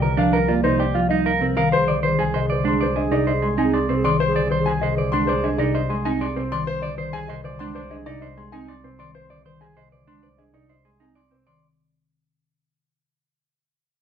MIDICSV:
0, 0, Header, 1, 6, 480
1, 0, Start_track
1, 0, Tempo, 618557
1, 1338, Time_signature, 4, 2, 24, 8
1, 10872, End_track
2, 0, Start_track
2, 0, Title_t, "Grand piano"
2, 0, Program_c, 0, 0
2, 18, Note_on_c, 0, 70, 66
2, 141, Note_on_c, 0, 77, 91
2, 174, Note_off_c, 0, 70, 0
2, 255, Note_on_c, 0, 70, 79
2, 295, Note_off_c, 0, 77, 0
2, 374, Note_on_c, 0, 74, 65
2, 413, Note_off_c, 0, 70, 0
2, 493, Note_on_c, 0, 72, 90
2, 532, Note_off_c, 0, 74, 0
2, 612, Note_on_c, 0, 74, 69
2, 652, Note_off_c, 0, 72, 0
2, 732, Note_on_c, 0, 77, 70
2, 772, Note_off_c, 0, 74, 0
2, 846, Note_on_c, 0, 75, 76
2, 892, Note_off_c, 0, 77, 0
2, 975, Note_on_c, 0, 77, 60
2, 1009, Note_off_c, 0, 75, 0
2, 1093, Note_on_c, 0, 70, 67
2, 1133, Note_off_c, 0, 77, 0
2, 1216, Note_on_c, 0, 77, 103
2, 1252, Note_off_c, 0, 70, 0
2, 1343, Note_on_c, 0, 72, 104
2, 1373, Note_off_c, 0, 77, 0
2, 1471, Note_on_c, 0, 74, 69
2, 1496, Note_off_c, 0, 72, 0
2, 1585, Note_on_c, 0, 72, 78
2, 1618, Note_off_c, 0, 74, 0
2, 1709, Note_on_c, 0, 80, 80
2, 1736, Note_off_c, 0, 72, 0
2, 1828, Note_on_c, 0, 75, 69
2, 1858, Note_off_c, 0, 80, 0
2, 1954, Note_on_c, 0, 72, 63
2, 1977, Note_off_c, 0, 75, 0
2, 2076, Note_on_c, 0, 84, 88
2, 2099, Note_off_c, 0, 72, 0
2, 2191, Note_on_c, 0, 72, 80
2, 2220, Note_off_c, 0, 84, 0
2, 2302, Note_on_c, 0, 75, 72
2, 2338, Note_off_c, 0, 72, 0
2, 2421, Note_on_c, 0, 74, 93
2, 2455, Note_off_c, 0, 75, 0
2, 2540, Note_on_c, 0, 75, 75
2, 2575, Note_off_c, 0, 74, 0
2, 2664, Note_on_c, 0, 84, 81
2, 2694, Note_off_c, 0, 75, 0
2, 2785, Note_on_c, 0, 80, 83
2, 2816, Note_off_c, 0, 84, 0
2, 2902, Note_on_c, 0, 84, 73
2, 2936, Note_off_c, 0, 80, 0
2, 3025, Note_on_c, 0, 72, 77
2, 3055, Note_off_c, 0, 84, 0
2, 3139, Note_on_c, 0, 84, 105
2, 3176, Note_off_c, 0, 72, 0
2, 3260, Note_on_c, 0, 72, 118
2, 3294, Note_off_c, 0, 84, 0
2, 3381, Note_on_c, 0, 74, 79
2, 3414, Note_off_c, 0, 72, 0
2, 3496, Note_on_c, 0, 72, 86
2, 3535, Note_off_c, 0, 74, 0
2, 3614, Note_on_c, 0, 80, 100
2, 3653, Note_off_c, 0, 72, 0
2, 3735, Note_on_c, 0, 75, 84
2, 3772, Note_off_c, 0, 80, 0
2, 3857, Note_on_c, 0, 72, 73
2, 3893, Note_off_c, 0, 75, 0
2, 3972, Note_on_c, 0, 84, 113
2, 4013, Note_off_c, 0, 72, 0
2, 4090, Note_on_c, 0, 72, 94
2, 4132, Note_off_c, 0, 84, 0
2, 4218, Note_on_c, 0, 75, 80
2, 4251, Note_off_c, 0, 72, 0
2, 4333, Note_on_c, 0, 74, 99
2, 4374, Note_off_c, 0, 75, 0
2, 4455, Note_on_c, 0, 75, 87
2, 4492, Note_off_c, 0, 74, 0
2, 4574, Note_on_c, 0, 84, 88
2, 4613, Note_off_c, 0, 75, 0
2, 4697, Note_on_c, 0, 80, 101
2, 4733, Note_off_c, 0, 84, 0
2, 4819, Note_on_c, 0, 84, 90
2, 4853, Note_off_c, 0, 80, 0
2, 4937, Note_on_c, 0, 72, 85
2, 4974, Note_off_c, 0, 84, 0
2, 5058, Note_on_c, 0, 84, 122
2, 5093, Note_off_c, 0, 72, 0
2, 5177, Note_on_c, 0, 72, 127
2, 5214, Note_off_c, 0, 84, 0
2, 5292, Note_on_c, 0, 74, 90
2, 5334, Note_off_c, 0, 72, 0
2, 5415, Note_on_c, 0, 72, 92
2, 5452, Note_off_c, 0, 74, 0
2, 5534, Note_on_c, 0, 80, 118
2, 5573, Note_off_c, 0, 72, 0
2, 5651, Note_on_c, 0, 75, 83
2, 5692, Note_off_c, 0, 80, 0
2, 5773, Note_on_c, 0, 72, 81
2, 5811, Note_off_c, 0, 75, 0
2, 5891, Note_on_c, 0, 84, 112
2, 5932, Note_off_c, 0, 72, 0
2, 6013, Note_on_c, 0, 72, 93
2, 6051, Note_off_c, 0, 84, 0
2, 6135, Note_on_c, 0, 75, 82
2, 6172, Note_off_c, 0, 72, 0
2, 6256, Note_on_c, 0, 74, 114
2, 6293, Note_off_c, 0, 75, 0
2, 6371, Note_on_c, 0, 75, 83
2, 6413, Note_off_c, 0, 74, 0
2, 6499, Note_on_c, 0, 84, 88
2, 6531, Note_off_c, 0, 75, 0
2, 6614, Note_on_c, 0, 80, 101
2, 6654, Note_off_c, 0, 84, 0
2, 6738, Note_on_c, 0, 84, 72
2, 6772, Note_off_c, 0, 80, 0
2, 6859, Note_on_c, 0, 72, 75
2, 6894, Note_off_c, 0, 84, 0
2, 6976, Note_on_c, 0, 84, 98
2, 7014, Note_off_c, 0, 72, 0
2, 7099, Note_on_c, 0, 72, 99
2, 7133, Note_off_c, 0, 84, 0
2, 7217, Note_on_c, 0, 74, 67
2, 7254, Note_off_c, 0, 72, 0
2, 7343, Note_on_c, 0, 72, 74
2, 7373, Note_off_c, 0, 74, 0
2, 7457, Note_on_c, 0, 80, 89
2, 7496, Note_off_c, 0, 72, 0
2, 7583, Note_on_c, 0, 75, 69
2, 7613, Note_off_c, 0, 80, 0
2, 7700, Note_on_c, 0, 72, 56
2, 7736, Note_off_c, 0, 75, 0
2, 7821, Note_on_c, 0, 84, 89
2, 7855, Note_off_c, 0, 72, 0
2, 7939, Note_on_c, 0, 72, 66
2, 7975, Note_off_c, 0, 84, 0
2, 8054, Note_on_c, 0, 75, 62
2, 8094, Note_off_c, 0, 72, 0
2, 8176, Note_on_c, 0, 74, 77
2, 8212, Note_off_c, 0, 75, 0
2, 8300, Note_on_c, 0, 75, 67
2, 8333, Note_off_c, 0, 74, 0
2, 8420, Note_on_c, 0, 84, 64
2, 8454, Note_off_c, 0, 75, 0
2, 8552, Note_on_c, 0, 80, 79
2, 8575, Note_off_c, 0, 84, 0
2, 8661, Note_on_c, 0, 84, 68
2, 8698, Note_off_c, 0, 80, 0
2, 8783, Note_on_c, 0, 72, 70
2, 8815, Note_off_c, 0, 84, 0
2, 8899, Note_on_c, 0, 84, 92
2, 8936, Note_off_c, 0, 72, 0
2, 9054, Note_off_c, 0, 84, 0
2, 10872, End_track
3, 0, Start_track
3, 0, Title_t, "Clean electric guitar"
3, 0, Program_c, 1, 27
3, 18, Note_on_c, 1, 70, 67
3, 134, Note_on_c, 1, 62, 90
3, 174, Note_off_c, 1, 70, 0
3, 257, Note_on_c, 1, 70, 75
3, 292, Note_off_c, 1, 62, 0
3, 376, Note_on_c, 1, 65, 72
3, 413, Note_off_c, 1, 70, 0
3, 494, Note_off_c, 1, 65, 0
3, 497, Note_on_c, 1, 63, 85
3, 618, Note_on_c, 1, 67, 68
3, 653, Note_off_c, 1, 63, 0
3, 737, Note_on_c, 1, 65, 65
3, 774, Note_off_c, 1, 67, 0
3, 856, Note_off_c, 1, 65, 0
3, 859, Note_on_c, 1, 63, 89
3, 978, Note_on_c, 1, 70, 71
3, 1014, Note_off_c, 1, 63, 0
3, 1098, Note_on_c, 1, 60, 67
3, 1134, Note_off_c, 1, 70, 0
3, 1218, Note_on_c, 1, 70, 84
3, 1254, Note_off_c, 1, 60, 0
3, 1333, Note_off_c, 1, 70, 0
3, 1337, Note_on_c, 1, 72, 69
3, 1454, Note_off_c, 1, 72, 0
3, 1458, Note_on_c, 1, 74, 71
3, 1573, Note_off_c, 1, 74, 0
3, 1576, Note_on_c, 1, 72, 86
3, 1698, Note_on_c, 1, 68, 92
3, 1733, Note_off_c, 1, 72, 0
3, 1816, Note_on_c, 1, 72, 76
3, 1854, Note_off_c, 1, 68, 0
3, 1934, Note_off_c, 1, 72, 0
3, 1938, Note_on_c, 1, 74, 71
3, 2056, Note_on_c, 1, 62, 96
3, 2094, Note_off_c, 1, 74, 0
3, 2178, Note_on_c, 1, 74, 72
3, 2213, Note_off_c, 1, 62, 0
3, 2296, Note_on_c, 1, 68, 73
3, 2334, Note_off_c, 1, 74, 0
3, 2418, Note_on_c, 1, 63, 87
3, 2453, Note_off_c, 1, 68, 0
3, 2537, Note_on_c, 1, 72, 73
3, 2574, Note_off_c, 1, 63, 0
3, 2656, Note_on_c, 1, 68, 67
3, 2694, Note_off_c, 1, 72, 0
3, 2777, Note_on_c, 1, 63, 102
3, 2813, Note_off_c, 1, 68, 0
3, 2899, Note_on_c, 1, 74, 74
3, 2933, Note_off_c, 1, 63, 0
3, 3020, Note_on_c, 1, 60, 77
3, 3054, Note_off_c, 1, 74, 0
3, 3141, Note_on_c, 1, 74, 100
3, 3174, Note_off_c, 1, 60, 0
3, 3258, Note_off_c, 1, 74, 0
3, 3262, Note_on_c, 1, 72, 74
3, 3379, Note_off_c, 1, 72, 0
3, 3382, Note_on_c, 1, 74, 91
3, 3501, Note_off_c, 1, 74, 0
3, 3504, Note_on_c, 1, 72, 95
3, 3626, Note_on_c, 1, 68, 100
3, 3656, Note_off_c, 1, 72, 0
3, 3747, Note_on_c, 1, 72, 83
3, 3777, Note_off_c, 1, 68, 0
3, 3863, Note_off_c, 1, 72, 0
3, 3866, Note_on_c, 1, 74, 74
3, 3983, Note_on_c, 1, 62, 101
3, 4016, Note_off_c, 1, 74, 0
3, 4103, Note_on_c, 1, 74, 92
3, 4136, Note_off_c, 1, 62, 0
3, 4221, Note_on_c, 1, 68, 77
3, 4256, Note_off_c, 1, 74, 0
3, 4341, Note_on_c, 1, 63, 111
3, 4375, Note_off_c, 1, 68, 0
3, 4460, Note_on_c, 1, 72, 85
3, 4495, Note_off_c, 1, 63, 0
3, 4578, Note_on_c, 1, 68, 88
3, 4614, Note_off_c, 1, 72, 0
3, 4699, Note_on_c, 1, 63, 127
3, 4734, Note_off_c, 1, 68, 0
3, 4820, Note_on_c, 1, 74, 94
3, 4854, Note_off_c, 1, 63, 0
3, 4939, Note_on_c, 1, 60, 83
3, 4974, Note_off_c, 1, 74, 0
3, 5059, Note_on_c, 1, 74, 104
3, 5094, Note_off_c, 1, 60, 0
3, 5175, Note_off_c, 1, 74, 0
3, 5178, Note_on_c, 1, 72, 82
3, 5294, Note_off_c, 1, 72, 0
3, 5297, Note_on_c, 1, 74, 97
3, 5415, Note_off_c, 1, 74, 0
3, 5418, Note_on_c, 1, 72, 99
3, 5537, Note_on_c, 1, 68, 116
3, 5574, Note_off_c, 1, 72, 0
3, 5662, Note_on_c, 1, 72, 95
3, 5693, Note_off_c, 1, 68, 0
3, 5777, Note_off_c, 1, 72, 0
3, 5780, Note_on_c, 1, 74, 86
3, 5902, Note_on_c, 1, 62, 114
3, 5934, Note_off_c, 1, 74, 0
3, 6019, Note_on_c, 1, 74, 89
3, 6055, Note_off_c, 1, 62, 0
3, 6138, Note_on_c, 1, 68, 70
3, 6174, Note_off_c, 1, 74, 0
3, 6258, Note_on_c, 1, 63, 100
3, 6294, Note_off_c, 1, 68, 0
3, 6379, Note_on_c, 1, 72, 78
3, 6414, Note_off_c, 1, 63, 0
3, 6499, Note_on_c, 1, 68, 65
3, 6534, Note_off_c, 1, 72, 0
3, 6618, Note_on_c, 1, 63, 108
3, 6654, Note_off_c, 1, 68, 0
3, 6738, Note_on_c, 1, 74, 75
3, 6774, Note_off_c, 1, 63, 0
3, 6862, Note_on_c, 1, 60, 66
3, 6894, Note_off_c, 1, 74, 0
3, 6981, Note_on_c, 1, 74, 88
3, 7015, Note_off_c, 1, 60, 0
3, 7095, Note_off_c, 1, 74, 0
3, 7098, Note_on_c, 1, 72, 64
3, 7215, Note_off_c, 1, 72, 0
3, 7218, Note_on_c, 1, 74, 77
3, 7336, Note_off_c, 1, 74, 0
3, 7339, Note_on_c, 1, 72, 85
3, 7462, Note_on_c, 1, 68, 85
3, 7494, Note_off_c, 1, 72, 0
3, 7580, Note_on_c, 1, 72, 80
3, 7615, Note_off_c, 1, 68, 0
3, 7697, Note_off_c, 1, 72, 0
3, 7700, Note_on_c, 1, 74, 58
3, 7818, Note_on_c, 1, 62, 88
3, 7854, Note_off_c, 1, 74, 0
3, 7938, Note_on_c, 1, 74, 67
3, 7974, Note_off_c, 1, 62, 0
3, 8059, Note_on_c, 1, 68, 63
3, 8094, Note_off_c, 1, 74, 0
3, 8179, Note_on_c, 1, 63, 81
3, 8214, Note_off_c, 1, 68, 0
3, 8298, Note_on_c, 1, 72, 63
3, 8334, Note_off_c, 1, 63, 0
3, 8419, Note_on_c, 1, 68, 62
3, 8454, Note_off_c, 1, 72, 0
3, 8536, Note_on_c, 1, 63, 81
3, 8574, Note_off_c, 1, 68, 0
3, 8655, Note_on_c, 1, 74, 71
3, 8693, Note_off_c, 1, 63, 0
3, 8776, Note_on_c, 1, 60, 58
3, 8813, Note_off_c, 1, 74, 0
3, 8898, Note_on_c, 1, 74, 83
3, 8933, Note_off_c, 1, 60, 0
3, 9054, Note_off_c, 1, 74, 0
3, 10872, End_track
4, 0, Start_track
4, 0, Title_t, "Alto flute"
4, 0, Program_c, 2, 73
4, 1336, Note_on_c, 2, 68, 36
4, 1510, Note_off_c, 2, 68, 0
4, 1583, Note_on_c, 2, 68, 50
4, 1758, Note_off_c, 2, 68, 0
4, 1835, Note_on_c, 2, 68, 58
4, 2008, Note_off_c, 2, 68, 0
4, 2077, Note_on_c, 2, 68, 64
4, 2252, Note_off_c, 2, 68, 0
4, 2330, Note_on_c, 2, 68, 75
4, 2503, Note_off_c, 2, 68, 0
4, 2577, Note_on_c, 2, 68, 74
4, 2751, Note_off_c, 2, 68, 0
4, 2824, Note_on_c, 2, 68, 84
4, 2998, Note_off_c, 2, 68, 0
4, 3070, Note_on_c, 2, 68, 89
4, 3245, Note_off_c, 2, 68, 0
4, 3316, Note_on_c, 2, 68, 91
4, 3492, Note_off_c, 2, 68, 0
4, 3566, Note_on_c, 2, 68, 89
4, 3741, Note_off_c, 2, 68, 0
4, 3814, Note_on_c, 2, 68, 79
4, 3989, Note_off_c, 2, 68, 0
4, 4065, Note_on_c, 2, 68, 78
4, 4239, Note_off_c, 2, 68, 0
4, 4309, Note_on_c, 2, 68, 66
4, 4484, Note_off_c, 2, 68, 0
4, 4563, Note_on_c, 2, 68, 58
4, 4736, Note_off_c, 2, 68, 0
4, 4814, Note_on_c, 2, 68, 46
4, 4986, Note_off_c, 2, 68, 0
4, 10872, End_track
5, 0, Start_track
5, 0, Title_t, "Marimba"
5, 0, Program_c, 3, 12
5, 13, Note_on_c, 3, 50, 69
5, 136, Note_on_c, 3, 53, 90
5, 172, Note_off_c, 3, 50, 0
5, 293, Note_off_c, 3, 53, 0
5, 381, Note_on_c, 3, 58, 69
5, 501, Note_on_c, 3, 48, 78
5, 535, Note_off_c, 3, 58, 0
5, 655, Note_off_c, 3, 48, 0
5, 741, Note_on_c, 3, 53, 74
5, 856, Note_on_c, 3, 55, 84
5, 895, Note_off_c, 3, 53, 0
5, 1013, Note_off_c, 3, 55, 0
5, 1096, Note_on_c, 3, 48, 72
5, 1218, Note_on_c, 3, 51, 81
5, 1253, Note_off_c, 3, 48, 0
5, 1374, Note_off_c, 3, 51, 0
5, 1460, Note_on_c, 3, 50, 82
5, 1577, Note_on_c, 3, 51, 73
5, 1615, Note_off_c, 3, 50, 0
5, 1734, Note_off_c, 3, 51, 0
5, 1819, Note_on_c, 3, 48, 77
5, 1936, Note_on_c, 3, 50, 71
5, 1974, Note_off_c, 3, 48, 0
5, 2050, Note_on_c, 3, 56, 93
5, 2093, Note_off_c, 3, 50, 0
5, 2211, Note_off_c, 3, 56, 0
5, 2295, Note_on_c, 3, 62, 67
5, 2415, Note_on_c, 3, 48, 87
5, 2453, Note_off_c, 3, 62, 0
5, 2573, Note_off_c, 3, 48, 0
5, 2656, Note_on_c, 3, 56, 76
5, 2773, Note_on_c, 3, 60, 97
5, 2813, Note_off_c, 3, 56, 0
5, 2932, Note_off_c, 3, 60, 0
5, 3020, Note_on_c, 3, 48, 81
5, 3138, Note_on_c, 3, 51, 104
5, 3175, Note_off_c, 3, 48, 0
5, 3294, Note_off_c, 3, 51, 0
5, 3376, Note_on_c, 3, 50, 90
5, 3495, Note_on_c, 3, 51, 88
5, 3533, Note_off_c, 3, 50, 0
5, 3653, Note_off_c, 3, 51, 0
5, 3738, Note_on_c, 3, 48, 93
5, 3857, Note_on_c, 3, 50, 84
5, 3894, Note_off_c, 3, 48, 0
5, 3977, Note_on_c, 3, 56, 98
5, 4013, Note_off_c, 3, 50, 0
5, 4133, Note_off_c, 3, 56, 0
5, 4217, Note_on_c, 3, 62, 84
5, 4337, Note_on_c, 3, 48, 117
5, 4374, Note_off_c, 3, 62, 0
5, 4494, Note_off_c, 3, 48, 0
5, 4580, Note_on_c, 3, 56, 92
5, 4700, Note_on_c, 3, 60, 109
5, 4735, Note_off_c, 3, 56, 0
5, 4854, Note_off_c, 3, 60, 0
5, 4941, Note_on_c, 3, 48, 84
5, 5060, Note_on_c, 3, 51, 116
5, 5095, Note_off_c, 3, 48, 0
5, 5214, Note_off_c, 3, 51, 0
5, 5297, Note_on_c, 3, 50, 97
5, 5416, Note_on_c, 3, 51, 93
5, 5453, Note_off_c, 3, 50, 0
5, 5573, Note_off_c, 3, 51, 0
5, 5657, Note_on_c, 3, 48, 88
5, 5775, Note_on_c, 3, 50, 91
5, 5813, Note_off_c, 3, 48, 0
5, 5900, Note_on_c, 3, 56, 119
5, 5933, Note_off_c, 3, 50, 0
5, 6054, Note_off_c, 3, 56, 0
5, 6136, Note_on_c, 3, 62, 86
5, 6258, Note_on_c, 3, 48, 101
5, 6293, Note_off_c, 3, 62, 0
5, 6414, Note_off_c, 3, 48, 0
5, 6499, Note_on_c, 3, 56, 84
5, 6617, Note_on_c, 3, 60, 105
5, 6654, Note_off_c, 3, 56, 0
5, 6773, Note_off_c, 3, 60, 0
5, 6861, Note_on_c, 3, 48, 74
5, 6977, Note_on_c, 3, 51, 82
5, 7015, Note_off_c, 3, 48, 0
5, 7133, Note_off_c, 3, 51, 0
5, 7213, Note_on_c, 3, 50, 74
5, 7335, Note_on_c, 3, 51, 80
5, 7372, Note_off_c, 3, 50, 0
5, 7493, Note_off_c, 3, 51, 0
5, 7577, Note_on_c, 3, 48, 66
5, 7699, Note_on_c, 3, 50, 67
5, 7733, Note_off_c, 3, 48, 0
5, 7820, Note_on_c, 3, 56, 82
5, 7854, Note_off_c, 3, 50, 0
5, 7975, Note_off_c, 3, 56, 0
5, 8055, Note_on_c, 3, 62, 70
5, 8177, Note_on_c, 3, 48, 79
5, 8213, Note_off_c, 3, 62, 0
5, 8333, Note_off_c, 3, 48, 0
5, 8418, Note_on_c, 3, 56, 62
5, 8537, Note_on_c, 3, 60, 86
5, 8574, Note_off_c, 3, 56, 0
5, 8693, Note_off_c, 3, 60, 0
5, 8784, Note_on_c, 3, 48, 61
5, 8902, Note_on_c, 3, 51, 80
5, 8936, Note_off_c, 3, 48, 0
5, 9055, Note_off_c, 3, 51, 0
5, 10872, End_track
6, 0, Start_track
6, 0, Title_t, "Double bass"
6, 0, Program_c, 4, 43
6, 0, Note_on_c, 4, 36, 69
6, 1209, Note_off_c, 4, 36, 0
6, 1338, Note_on_c, 4, 36, 62
6, 8891, Note_off_c, 4, 36, 0
6, 10872, End_track
0, 0, End_of_file